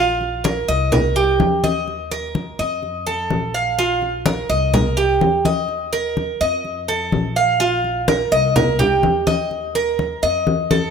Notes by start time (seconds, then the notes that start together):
Already playing: A#1 F4
0.21 high conga
0.44 A#4, high conga
0.68 C2 D#5, high conga
0.92 A#4, high conga, low conga
1.16 G4, high conga
1.40 D#2, high conga
1.64 D#5, high conga
1.88 high conga
2.11 A#4, high conga
2.35 high conga
2.59 F2 D#5, high conga
2.83 high conga
3.07 A4, high conga
3.30 A#1, high conga
3.54 F5
3.78 F4, high conga
4.02 high conga
4.26 A#4, high conga
4.50 C2 D#5, high conga
4.74 A#4, high conga, low conga
4.97 G4, high conga
5.21 D#2, high conga
5.45 D#5, high conga
5.68 high conga
5.93 A#4, high conga
6.17 high conga
6.41 F2 D#5, high conga
6.65 high conga
6.88 A4, high conga
7.12 A#1, high conga
7.36 F5
7.60 F4, high conga
7.84 high conga
8.08 A#4, high conga
8.31 C2 D#5, high conga
8.56 A#4, high conga, low conga
8.79 G4, high conga, low conga
9.03 D#2, high conga
9.27 D#5, high conga
9.51 high conga
9.75 A#4, high conga
9.99 high conga
10.23 F2 D#5, high conga
10.47 high conga
10.71 A4, high conga